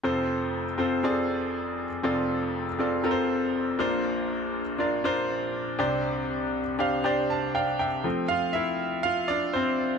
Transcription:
0.04 F1 F2 C4 F4 A4 C5
0.78 C4 F4 A4 C5
1.03 C4 F4 G#4 D5
1.10 A4
2.03 F1 F2 C4 F4 A4 D5
2.79 C4 F4 A4 D5
3.04 C4 F4 A4 A#4
3.11 C5
3.79 A#1 A#2 D4 F4 A#4 C5
4.78 D4 F4 A#4 D5
5.04 D4 F4 A#4 C5
5.79 C2 C3 D4 G4 C5 D5
6.79 D4 G4 C5 F5
7.04 D4 G4 C5 D5
7.30 A5
7.55 D5 F5 G5
7.79 E5 G5
8.04 F3 A3 C4
8.28 F4 F5
8.53 E4 E5
9.03 F4 F5
9.28 D4 D5
9.53 C4 C5

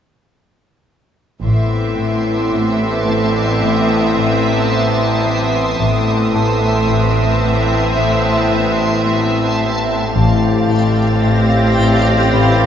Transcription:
1.43 A1 A2 B3 C4 E5 A5 C6 D6
1.98 A2
2.54 A2
3.08 A2
3.63 A2 E5 D#6
4.18 A2
4.71 A3
5.26 A3
5.79 A1 A2 B3 C4 E5 A5 C6
6.35 A2 A4 A5
6.89 A2
7.43 A2
7.97 A2
8.51 A2
9.05 A3
9.60 A3
10.13 A1 A2 C4 G4 F5 G5 A6
10.69 A2
11.23 A2 A#6
11.78 A2
12.32 A2 B4 B5

